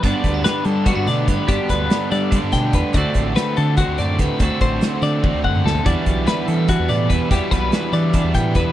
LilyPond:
<<
  \new Staff \with { instrumentName = "Clean electric guitar" } { \time 7/8 \key g \major \tempo 4 = 144 d''4 b'8 a'8 fis'8 d''8 b'8 | g'8 b'4 d''4 g''8 b'8 | d''4 b'8 a'8 fis'8 d''8 b'8 | a'8 c''4 d''4 fis''8 a'8 |
d''4 b'8 a'8 fis'8 d''8 b'8 | g'8 b'4 d''4 g''8 b'8 | }
  \new Staff \with { instrumentName = "Clean electric guitar" } { \time 7/8 \key g \major << { <b d' fis'>8 b16 d'16 g'4 b16 d'8. g'8 | <b d' fis'>8 d'8 g'4 d'4 g'8 | <a c' fis'>8 c'4. c'4 g'8 | <a c' fis'>8 c'2. |
<g d' fis'>8 d'8 fis'4 d'4 e'8 | <g d' fis'>8 d'8 fis'4 d'4 e'8 | } \\ { g,4. d4 d,4 | g,4. d4 d,4 | d,4. d4 a,4 | d,4. d4. d,8 |
e,4. e4 b,4 | e,4. e4 b,4 | } >> }
  \new Staff \with { instrumentName = "Overdriven electric guitar" } { \time 7/8 \key g \major <g, d g b d'>2 <g, d g b d'>4. | <g, d g b d'>2 <g, d g b d'>4. | <d a c' fis'>2 <d a c' fis'>4. | <d a c' fis'>2 <d a c' fis'>4. |
<e g b e'>2 <e g b e'>4. | <e g b e'>2 <e g b e'>4. | }
  \new Staff \with { instrumentName = "Fingered electric bass" } { \clef bass \time 7/8 \key g \major g,16 r16 d,8 r8 g8. g,16 b,8 g,16 r16 | g,16 r16 d,8 r8 g8. g,16 b,8 e,16 r16 | d,16 r16 a,,8 r8 d8. d,16 fis,8 d,16 r16 | d,16 r16 a,,8 r8 d8. d,16 fis,8 d,16 r16 |
e,16 r16 b,,8 r8 e8. e,16 a,8 e,16 r16 | e,16 r16 b,,8 r8 e8. e,16 a,8 e,16 r16 | }
  \new DrumStaff \with { instrumentName = "Drums" } \drummode { \time 7/8 <hh bd>8 <hh bd>8 <hh sn>8 hh8 <hh bd>8 <hh sn>8 <hh bd>8 | <hh bd>8 <hh bd>8 <hh sn>8 <hh sn>8 <hh bd>8 <hh bd sn>8 <hh bd>8 | <hh bd>8 <hh bd>8 <hh sn>8 hh8 <hh bd>8 hh8 <hh bd sn>8 | <hh bd>8 <hh bd>8 <hh sn>8 hh8 <bd tommh>8 bd16 toml16 sn16 tomfh16 |
<hh bd>8 <hh bd>8 <hh sn>8 hh8 <hh bd>8 hh8 <hh bd>8 | <hh bd>8 <hh bd>8 <hh sn>8 hh8 <hh bd>8 <hh bd>8 <hh bd>8 | }
>>